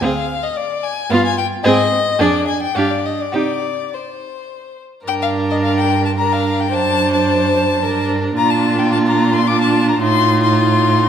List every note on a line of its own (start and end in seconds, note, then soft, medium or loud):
0.01 0.44 D2 medium
0.01 0.27 C4 soft
0.01 0.27 G#4 soft
0.01 0.45 F5 medium
0.44 0.58 D#5 medium
0.56 0.85 D5 medium
0.84 1.12 G#5 medium
1.10 1.53 G2 medium
1.10 1.35 B3 medium
1.10 1.36 F4 medium
1.10 1.24 F5 medium
1.25 1.37 G#5 medium
1.38 1.46 G5 medium
1.64 2.08 G#2 medium
1.64 1.90 C4 medium
1.64 1.90 G#4 medium
1.64 2.23 D#5 loud
2.19 2.64 F2 medium
2.19 2.45 D4 medium
2.19 2.45 G#4 medium
2.19 2.47 D5 medium
2.48 2.61 G#5 medium
2.62 2.78 G5 medium
2.75 3.21 G2 medium
2.75 3.02 D4 medium
2.75 3.02 G4 soft
2.75 2.93 F5 medium
2.91 3.07 D5 medium
3.06 3.23 D#5 medium
3.21 3.35 D5 medium
3.32 3.80 C3 medium
3.32 3.61 D#4 soft
3.32 3.60 G4 soft
3.36 3.96 D5 medium
3.94 4.80 C5 soft
5.05 6.74 G2 medium
5.05 6.14 D4 medium
5.05 6.14 A#4 medium
5.05 5.13 G5 medium
5.22 5.30 F5 medium
5.51 5.56 D#5 medium
5.64 5.77 F5 medium
5.77 6.04 G5 medium
6.06 6.11 A5 medium
6.17 6.72 D4 medium
6.17 6.72 A#4 medium
6.17 6.34 A#5 medium
6.33 6.62 F5 medium
6.61 6.75 G5 medium
6.73 7.83 F#2 medium
6.73 7.80 D4 medium
6.73 7.84 C5 medium
6.73 7.13 A5 loud
7.13 8.07 A5 medium
7.82 8.36 G2 medium
7.82 8.36 D4 medium
7.82 8.37 A#4 medium
8.37 9.98 A#2 medium
8.37 9.44 D4 medium
8.37 9.45 F4 medium
8.37 8.52 A#5 medium
8.50 8.81 A5 medium
8.79 8.92 G5 medium
8.93 8.98 A5 medium
9.07 9.35 A#5 medium
9.34 9.49 C6 medium
9.46 10.00 D4 medium
9.46 10.00 F4 medium
9.46 9.61 D6 medium
9.61 9.90 A5 medium
9.89 10.02 A#5 medium
10.01 11.09 A2 medium
10.01 11.09 D#4 medium
10.01 11.07 F4 medium
10.01 10.42 C6 loud
10.44 11.09 C6 medium